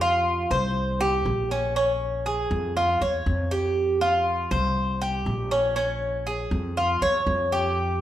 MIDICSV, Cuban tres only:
0, 0, Header, 1, 2, 480
1, 0, Start_track
1, 0, Tempo, 500835
1, 1685, Time_signature, 4, 2, 24, 8
1, 7677, End_track
2, 0, Start_track
2, 0, Title_t, "Cuban tres"
2, 0, Program_c, 0, 25
2, 12, Note_on_c, 0, 65, 88
2, 474, Note_off_c, 0, 65, 0
2, 489, Note_on_c, 0, 72, 81
2, 953, Note_off_c, 0, 72, 0
2, 964, Note_on_c, 0, 67, 92
2, 1430, Note_off_c, 0, 67, 0
2, 1449, Note_on_c, 0, 61, 81
2, 1676, Note_off_c, 0, 61, 0
2, 1688, Note_on_c, 0, 61, 82
2, 2152, Note_off_c, 0, 61, 0
2, 2166, Note_on_c, 0, 68, 68
2, 2631, Note_off_c, 0, 68, 0
2, 2650, Note_on_c, 0, 65, 78
2, 2880, Note_off_c, 0, 65, 0
2, 2890, Note_on_c, 0, 73, 77
2, 3353, Note_off_c, 0, 73, 0
2, 3367, Note_on_c, 0, 67, 80
2, 3831, Note_off_c, 0, 67, 0
2, 3846, Note_on_c, 0, 65, 80
2, 4311, Note_off_c, 0, 65, 0
2, 4323, Note_on_c, 0, 72, 78
2, 4790, Note_off_c, 0, 72, 0
2, 4806, Note_on_c, 0, 67, 79
2, 5271, Note_off_c, 0, 67, 0
2, 5284, Note_on_c, 0, 61, 83
2, 5509, Note_off_c, 0, 61, 0
2, 5521, Note_on_c, 0, 61, 87
2, 5989, Note_off_c, 0, 61, 0
2, 6005, Note_on_c, 0, 68, 71
2, 6472, Note_off_c, 0, 68, 0
2, 6490, Note_on_c, 0, 65, 83
2, 6722, Note_off_c, 0, 65, 0
2, 6729, Note_on_c, 0, 73, 88
2, 7194, Note_off_c, 0, 73, 0
2, 7210, Note_on_c, 0, 67, 80
2, 7675, Note_off_c, 0, 67, 0
2, 7677, End_track
0, 0, End_of_file